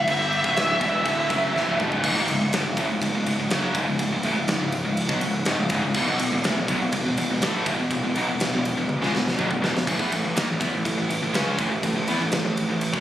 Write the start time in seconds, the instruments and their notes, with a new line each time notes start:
Already playing: lead electric guitar F#5
0.07 picked electric bass G1, distorted electric guitar G2 D3 G3, lead electric guitar E5, kick, crash
0.33 crash
0.44 picked electric bass C#1, distorted electric guitar C#2 G#2 C#3, kick
0.56 snare, crash
0.80 picked electric bass E1, distorted electric guitar E2 B2 E3, kick, crash
1.05 picked electric bass D1, distorted electric guitar D2 A2 D3, kick, crash
1.29 picked electric bass F#1, distorted electric guitar F#2 C#3 F#3, kick, crash
1.52 picked electric bass A1, distorted electric guitar A2 E3, snare
1.66 picked electric bass C#1, distorted electric guitar C#2 G#2
1.79 picked electric bass E1, distorted electric guitar E2 B2, mid tom
1.92 picked electric bass C#1, distorted electric guitar C#2 G#2, floor tom
2.04 picked electric bass C#1, distorted electric guitar C#2 G#2, kick, crash
2.16 picked electric bass G#1, distorted electric guitar G#2 D#3
2.28 picked electric bass C#1, distorted electric guitar C#2 G#2, ride
2.41 picked electric bass C#1, distorted electric guitar C#2 G#2
2.53 picked electric bass G1, distorted electric guitar G2 D3, snare, ride
2.65 picked electric bass C#1, distorted electric guitar C#2 G#2
2.77 picked electric bass A1, distorted electric guitar A2 E3, kick, ride
2.90 picked electric bass C#1, distorted electric guitar C#2 G#2
3.02 picked electric bass C#1, distorted electric guitar C#2 G#2, kick, ride
3.14 picked electric bass C#1, distorted electric guitar C#2 G#2
3.26 picked electric bass C#1, distorted electric guitar C#2 G#2, ride
3.39 picked electric bass C#1, distorted electric guitar C#2 G#2
3.50 picked electric bass F#1, distorted electric guitar F#2 C#3 F#3, snare, ride
3.75 picked electric bass C#1, distorted electric guitar C#2 G#2, kick, ride
3.87 picked electric bass C#1, distorted electric guitar C#2 G#2
3.99 picked electric bass C#1, distorted electric guitar C#2 G#2, kick, ride
4.13 picked electric bass C#1, distorted electric guitar C#2 G#2
4.23 picked electric bass A1, distorted electric guitar A2 E3, ride
4.37 picked electric bass C#1, distorted electric guitar C#2 G#2
4.48 picked electric bass C#1, distorted electric guitar C#2 G#2, snare, ride
4.61 picked electric bass C#1, distorted electric guitar C#2 G#2
4.72 ride
4.85 picked electric bass C#1, distorted electric guitar C#2 G#2
4.97 ride
5.09 picked electric bass B1, distorted electric guitar B2 F#3, kick
5.21 picked electric bass C#1, distorted electric guitar C#2 G#2, ride
5.45 picked electric bass G#1, distorted electric guitar G#2 D#3, snare, ride
5.58 picked electric bass C#1, distorted electric guitar C#2 G#2
5.70 picked electric bass C#1, distorted electric guitar C#2 G#2, kick, ride
5.82 picked electric bass C#1, distorted electric guitar C#2 G#2
5.94 picked electric bass E1, distorted electric guitar E2 B2, kick, crash
6.06 picked electric bass B1, distorted electric guitar B2 F#3
6.19 picked electric bass E1, distorted electric guitar E2 B2, ride
6.32 picked electric bass E1, distorted electric guitar E2 B2
6.44 picked electric bass A1, distorted electric guitar A2 E3, snare, ride
6.56 picked electric bass E1, distorted electric guitar E2 B2
6.68 picked electric bass B1, distorted electric guitar B2 F#3, kick, ride
6.81 picked electric bass E1, distorted electric guitar E2 B2
6.92 picked electric bass E1, distorted electric guitar E2 B2, kick, ride
7.05 picked electric bass E1, distorted electric guitar E2 B2
7.17 picked electric bass E1, distorted electric guitar E2 B2, ride
7.30 picked electric bass E1, distorted electric guitar E2 B2
7.41 picked electric bass A1, distorted electric guitar A2 E3 A3, snare, ride
7.66 picked electric bass E1, distorted electric guitar E2 B2, kick, ride
7.79 picked electric bass E1, distorted electric guitar E2 B2
7.91 picked electric bass E1, distorted electric guitar E2 B2, kick, ride
8.04 picked electric bass E1, distorted electric guitar E2 B2
8.15 picked electric bass B1, distorted electric guitar B2 F#3, ride
8.28 picked electric bass E1, distorted electric guitar E2 B2
8.40 picked electric bass E1, distorted electric guitar E2 B2, snare, ride
8.53 picked electric bass E1, distorted electric guitar E2 B2
8.65 ride
8.77 picked electric bass E1, distorted electric guitar E2 B2
8.89 high tom
9.02 picked electric bass C#2, distorted electric guitar C#3 G#3, snare
9.13 picked electric bass E1, distorted electric guitar E2 B2, snare
9.28 snare
9.38 picked electric bass B1, distorted electric guitar B2 F#3, mid tom
9.50 picked electric bass E1, distorted electric guitar E2 B2, mid tom
9.61 picked electric bass E1, distorted electric guitar E2 B2, snare
9.74 picked electric bass E1, distorted electric guitar E2 B2, snare
9.87 picked electric bass A1, distorted electric guitar A2 E3, kick, crash
9.99 picked electric bass E2, distorted electric guitar E3 B3, kick
10.11 picked electric bass A1, distorted electric guitar A2 E3, ride
10.24 picked electric bass A1, distorted electric guitar A2 E3
10.36 picked electric bass D#2, distorted electric guitar D#3 A#3, snare, ride
10.48 picked electric bass A1, distorted electric guitar A2 E3
10.60 picked electric bass E2, distorted electric guitar E3 B3, kick, ride
10.73 picked electric bass A1, distorted electric guitar A2 E3
10.85 picked electric bass A1, distorted electric guitar A2 E3, kick, ride
10.98 picked electric bass A1, distorted electric guitar A2 E3
11.09 picked electric bass A1, distorted electric guitar A2 E3, ride
11.22 picked electric bass A1, distorted electric guitar A2 E3
11.33 picked electric bass C#2, distorted electric guitar C#3 G#3 C#4, snare, ride
11.59 picked electric bass A1, distorted electric guitar A2 E3, kick, ride
11.71 picked electric bass A1, distorted electric guitar A2 E3
11.83 picked electric bass A1, distorted electric guitar A2 E3, kick, ride
11.96 picked electric bass A1, distorted electric guitar A2 E3
12.08 picked electric bass E2, distorted electric guitar E3 B3, ride
12.21 picked electric bass A1, distorted electric guitar A2 E3
12.32 picked electric bass A1, distorted electric guitar A2 E3, snare, ride
12.44 picked electric bass A1, distorted electric guitar A2 E3
12.57 ride
12.68 picked electric bass A1, distorted electric guitar A2 E3
12.81 ride
12.93 picked electric bass F#2, distorted electric guitar F#3 C#4, kick